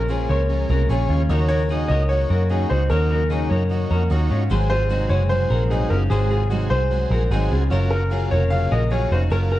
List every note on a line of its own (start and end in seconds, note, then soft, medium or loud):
0.00 0.27 A#1 loud
0.00 4.47 C#3 medium
0.00 1.28 G#3 medium
0.00 4.48 A#3 medium
0.00 1.28 F4 medium
0.00 0.11 F#4 medium
0.00 0.32 A#4 medium
0.08 0.29 A#2 medium
0.08 0.30 F3 medium
0.08 0.30 G#3 medium
0.08 0.42 C#4 medium
0.08 0.29 C#4 medium
0.08 0.27 F4 medium
0.08 0.31 F4 medium
0.08 0.43 G#4 medium
0.08 0.30 G#4 medium
0.08 0.43 C5 medium
0.28 0.64 C#2 medium
0.28 0.50 G#3 soft
0.28 0.50 C#4 soft
0.28 0.49 F4 medium
0.28 0.68 A#4 medium
0.28 1.06 C#5 medium
0.28 0.68 C#5 medium
0.49 0.70 F3 medium
0.49 0.71 G#3 medium
0.49 0.82 C#4 medium
0.49 0.70 C#4 medium
0.49 0.68 F4 medium
0.49 0.83 G#4 medium
0.49 0.83 A#4 medium
0.69 0.87 C2 medium
0.69 0.89 G#3 soft
0.69 0.90 C#4 medium
0.69 0.90 F4 medium
0.69 0.91 F#4 medium
0.69 0.90 A#4 medium
0.89 1.07 A#1 medium
0.89 1.10 A#2 medium
0.89 1.10 F3 medium
0.89 1.11 G#3 medium
0.89 1.22 C#4 medium
0.89 1.10 C#4 medium
0.89 1.09 F4 medium
0.89 1.07 F4 loud
0.89 1.23 G#4 medium
0.89 1.10 G#4 medium
0.89 1.23 C#5 medium
1.08 1.27 D#2 medium
1.08 1.30 G#3 medium
1.08 1.30 C#4 medium
1.08 1.31 C#4 medium
1.08 1.30 F4 medium
1.29 1.87 D#2 loud
1.29 1.50 D#3 loud
1.29 9.59 F#3 medium
1.29 1.50 A#3 medium
1.29 1.49 C#4 loud
1.29 1.63 D#4 medium
1.29 4.49 D#4 medium
1.29 1.63 F#4 medium
1.29 1.47 F#4 medium
1.29 1.49 A#4 medium
1.29 1.50 C#5 loud
1.29 1.64 C#5 loud
1.49 1.69 A#3 soft
1.49 1.70 C#4 soft
1.49 1.70 F#4 medium
1.49 1.71 F#4 medium
1.49 1.70 A#4 medium
1.49 1.91 C#5 loud
1.69 1.90 D#3 medium
1.69 1.90 A#3 medium
1.69 1.90 C#4 medium
1.69 2.03 D#4 medium
1.69 1.91 D#4 medium
1.69 2.04 F#4 medium
1.69 1.88 F#4 medium
1.69 1.91 G#4 medium
1.69 2.04 D#5 medium
1.88 2.24 C#2 medium
1.88 2.10 C#4 medium
1.88 2.10 F#4 medium
1.88 2.29 A#4 medium
1.88 2.28 C#5 medium
1.88 2.10 D#5 medium
1.93 2.09 A#3 soft
2.09 2.30 D#3 medium
2.09 2.31 A#3 medium
2.09 2.29 C#4 medium
2.09 2.43 D#4 medium
2.09 2.44 F#4 medium
2.09 2.27 F#4 medium
2.09 2.72 C#5 loud
2.09 2.44 C#5 medium
2.29 2.64 F#2 medium
2.29 2.49 A#3 medium
2.29 2.50 C#4 medium
2.29 2.50 F#4 medium
2.29 2.51 F#4 medium
2.29 2.50 A#4 medium
2.49 2.70 D#3 medium
2.49 2.70 A#3 medium
2.49 2.70 C#4 medium
2.49 2.83 D#4 medium
2.49 2.70 D#4 medium
2.49 2.84 F#4 medium
2.49 2.68 F#4 medium
2.49 2.70 G#4 medium
2.49 2.84 C#5 medium
2.69 2.88 C#2 medium
2.69 2.90 A#3 soft
2.69 2.90 C#4 soft
2.69 2.91 D#4 medium
2.69 2.90 F#4 medium
2.69 2.91 F#4 medium
2.69 2.89 C5 medium
2.90 3.48 D#2 medium
2.90 3.10 D#3 medium
2.90 3.11 A#3 medium
2.90 3.10 C#4 medium
2.90 3.23 D#4 medium
2.90 3.24 F#4 medium
2.90 3.08 F#4 medium
2.90 3.46 A#4 medium
2.90 3.10 A#4 medium
2.90 3.24 A#4 medium
2.90 3.11 C#5 loud
3.10 3.30 A#3 soft
3.10 3.30 C#4 medium
3.10 3.30 F#4 soft
3.10 3.31 F#4 medium
3.10 3.30 A#4 medium
3.30 3.50 D#3 medium
3.30 3.51 A#3 medium
3.30 3.50 C#4 medium
3.30 3.63 D#4 medium
3.30 3.51 D#4 medium
3.30 3.64 F#4 medium
3.30 3.48 F#4 medium
3.30 3.51 G#4 medium
3.30 3.64 C#5 medium
3.49 3.85 F#2 medium
3.49 3.70 A#3 soft
3.49 3.71 C#4 soft
3.49 3.70 F#4 medium
3.49 3.89 A#4 medium
3.49 4.26 C#5 medium
3.49 3.88 C#5 medium
3.69 3.90 D#3 medium
3.69 3.91 A#3 medium
3.69 3.91 C#4 medium
3.69 4.03 D#4 medium
3.69 4.03 F#4 medium
3.69 3.89 F#4 medium
3.69 4.04 C#5 medium
3.90 4.08 F2 medium
3.90 4.10 A#3 soft
3.90 4.11 C#4 medium
3.90 4.11 F#4 medium
3.90 4.10 F#4 medium
3.90 4.11 A#4 medium
4.10 4.28 D#2 loud
4.10 4.30 D#3 medium
4.10 4.31 A#3 medium
4.10 4.30 C#4 medium
4.10 4.43 D#4 medium
4.10 4.31 D#4 medium
4.10 4.30 F#4 medium
4.10 4.44 F#4 medium
4.10 4.28 F#4 medium
4.10 4.44 C#5 loud
4.29 4.48 G#2 medium
4.29 4.50 A#3 medium
4.29 4.51 C#4 soft
4.29 4.51 C#4 medium
4.29 4.51 F4 medium
4.29 4.50 F#4 medium
4.49 5.08 G#1 loud
4.49 4.70 G#2 medium
4.49 7.68 C3 medium
4.49 4.71 D#3 medium
4.49 4.71 F#3 medium
4.49 7.67 G#3 medium
4.49 4.70 G#3 medium
4.49 4.69 C4 medium
4.49 7.68 D#4 medium
4.49 4.83 F#4 medium
4.49 4.84 G#4 medium
4.49 4.70 G#4 medium
4.49 4.68 G#4 loud
4.49 4.71 C5 loud
4.49 4.84 C5 medium
4.69 4.89 F#3 soft
4.69 4.90 G#3 soft
4.69 4.90 C4 medium
4.69 4.91 F4 medium
4.69 4.90 G#4 medium
4.69 5.12 C5 loud
4.89 5.10 G#2 medium
4.89 5.11 D#3 medium
4.89 5.11 F#3 medium
4.89 5.10 G#3 medium
4.89 5.09 C4 medium
4.89 5.11 D#4 medium
4.89 5.23 F#4 medium
4.89 5.11 F#4 medium
4.89 5.24 G#4 medium
4.89 5.08 G#4 medium
4.89 5.24 C5 medium
5.09 5.45 F#1 medium
5.09 5.28 F#3 medium
5.09 5.29 G#3 soft
5.09 5.30 C4 medium
5.09 5.30 G#4 medium
5.09 5.49 G#4 medium
5.09 5.48 C5 medium
5.09 5.31 C#5 loud
5.29 5.50 F#3 medium
5.29 5.51 G#3 medium
5.29 5.50 C4 medium
5.29 5.63 F#4 medium
5.29 5.64 G#4 medium
5.29 5.49 G#4 medium
5.29 5.92 C5 loud
5.29 5.64 C5 medium
5.50 5.85 A#1 medium
5.50 5.71 F#3 soft
5.50 5.71 G#3 soft
5.50 5.71 C4 medium
5.50 5.70 F#4 medium
5.50 5.71 G#4 medium
5.50 5.71 A#4 medium
5.70 5.91 G#2 medium
5.70 5.91 D#3 medium
5.70 5.92 F#3 medium
5.70 5.92 G#3 medium
5.70 5.91 C4 medium
5.70 5.91 D#4 medium
5.70 6.03 F#4 medium
5.70 5.90 G#4 medium
5.70 6.03 G#4 medium
5.70 5.89 G#4 medium
5.70 6.04 D#5 medium
5.90 6.08 F#1 medium
5.90 6.11 G#3 soft
5.90 6.11 C4 medium
5.90 6.11 C#4 medium
5.90 6.11 F4 medium
5.90 6.11 G#4 medium
5.90 5.95 A#4 medium
5.94 6.10 F#3 soft
6.10 6.68 G#1 loud
6.10 6.31 G#2 medium
6.10 6.31 D#3 medium
6.10 6.31 F#3 medium
6.10 6.31 G#3 medium
6.10 6.30 C4 medium
6.10 6.43 F#4 medium
6.10 6.72 G#4 loud
6.10 6.44 G#4 medium
6.10 6.30 G#4 medium
6.10 6.29 G#4 medium
6.10 6.31 C5 loud
6.10 6.44 C5 medium
6.30 6.50 F#3 soft
6.30 6.50 G#3 soft
6.30 6.51 C4 medium
6.30 6.51 F4 medium
6.30 6.51 G#4 medium
6.30 6.50 G#4 medium
6.50 6.71 G#2 medium
6.50 6.71 D#3 medium
6.50 6.71 F#3 medium
6.50 6.71 G#3 medium
6.50 6.71 C4 medium
6.50 6.71 D#4 medium
6.50 6.83 F#4 medium
6.50 6.71 F#4 medium
6.50 6.83 G#4 medium
6.50 6.69 G#4 medium
6.50 6.84 C5 medium
6.70 7.05 C2 medium
6.70 6.91 G#3 soft
6.70 6.91 C4 medium
6.70 6.91 G#4 medium
6.70 7.09 G#4 medium
6.70 7.47 C5 loud
6.70 7.09 C5 medium
6.74 6.90 F#3 soft
6.90 7.11 F#3 medium
6.90 7.12 G#3 medium
6.90 7.11 C4 medium
6.90 7.23 F#4 medium
6.90 7.24 G#4 medium
6.90 7.10 G#4 medium
6.90 7.24 C5 medium
7.10 7.28 A#1 loud
7.10 7.31 G#3 medium
7.10 7.32 C4 medium
7.10 7.32 F#4 medium
7.10 7.31 G#4 medium
7.10 7.31 A#4 medium
7.14 7.31 F#3 medium
7.31 7.48 G#1 loud
7.31 7.51 G#2 medium
7.31 7.51 D#3 medium
7.31 7.52 F#3 medium
7.31 7.52 G#3 loud
7.31 7.51 C4 loud
7.31 7.51 D#4 medium
7.31 7.64 F#4 medium
7.31 7.64 G#4 medium
7.31 7.51 G#4 medium
7.31 7.50 G#4 medium
7.31 7.64 C5 loud
7.51 7.68 C#2 medium
7.51 7.69 F#3 medium
7.51 7.71 G#3 medium
7.51 7.72 C4 medium
7.51 7.72 C#4 medium
7.51 7.71 F4 medium
7.51 7.71 G#4 medium
7.70 8.28 F#1 medium
7.70 9.59 C#3 medium
7.70 7.91 F#3 medium
7.70 9.59 A#3 medium
7.70 7.91 C#4 medium
7.70 8.03 F4 medium
7.70 7.91 F4 loud
7.70 8.03 F#4 medium
7.70 8.04 A#4 medium
7.70 7.91 A#4 medium
7.70 7.89 A#4 loud
7.70 7.91 C#5 medium
7.70 9.59 F5 medium
7.90 8.10 C#4 soft
7.90 8.11 F4 soft
7.90 8.12 F#4 medium
7.90 8.11 A#4 medium
7.90 8.28 A#4 medium
7.90 8.11 A#4 medium
8.10 8.31 F#3 medium
8.10 8.31 C#4 medium
8.10 8.44 F4 medium
8.10 8.32 F4 loud
8.10 8.32 F4 medium
8.10 8.44 F#4 medium
8.10 8.31 G#4 medium
8.10 8.44 A#4 medium
8.10 8.30 A#4 loud
8.31 8.66 F1 medium
8.31 8.50 C#4 soft
8.31 8.52 F4 medium
8.31 8.51 A#4 medium
8.31 8.69 A#4 medium
8.31 8.52 C#5 loud
8.31 8.69 C#5 medium
8.50 8.71 F#3 medium
8.50 8.71 C#4 medium
8.50 8.84 F4 medium
8.50 8.71 F4 medium
8.50 8.84 F#4 medium
8.50 8.84 G#4 medium
8.50 8.69 A#4 medium
8.50 8.71 F5 loud
8.71 9.06 A#1 medium
8.71 8.90 C#4 medium
8.71 8.91 F4 medium
8.71 8.92 F#4 medium
8.71 8.91 A#4 medium
8.71 8.90 D#5 medium
8.90 9.11 F#3 medium
8.90 9.11 C#4 medium
8.90 9.24 F4 medium
8.90 9.11 F4 medium
8.90 9.12 F4 medium
8.90 9.24 F#4 medium
8.90 9.11 G#4 medium
8.90 9.09 A#4 medium
8.90 9.10 C#5 medium
8.90 9.24 C#5 medium
9.11 9.28 F1 medium
9.11 9.30 C#4 soft
9.11 9.32 D#4 medium
9.11 9.30 F4 soft
9.11 9.32 F#4 medium
9.11 9.31 A#4 soft
9.11 9.17 C5 medium
9.30 9.59 F#1 loud
9.30 9.51 F#3 medium
9.30 9.51 C#4 medium
9.30 9.59 F4 medium
9.30 9.51 F4 medium
9.30 9.59 F#4 medium
9.30 9.37 A#4 medium
9.30 9.59 A#4 medium
9.30 9.50 A#4 medium
9.30 9.49 A#4 medium
9.30 9.51 C#5 loud
9.50 9.59 C#4 soft
9.50 9.59 F4 soft
9.50 9.59 F#4 medium
9.50 9.59 A#4 medium